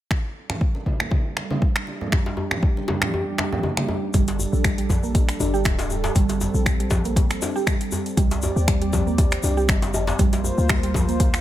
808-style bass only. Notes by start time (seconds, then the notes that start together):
4.14 G1
4.53 A#1
5.40 G1
5.65 D1
6.16 G1
6.54 A#1
8.17 C2
8.56 D#2
9.43 C2
9.69 G1
10.19 A#1
10.58 D2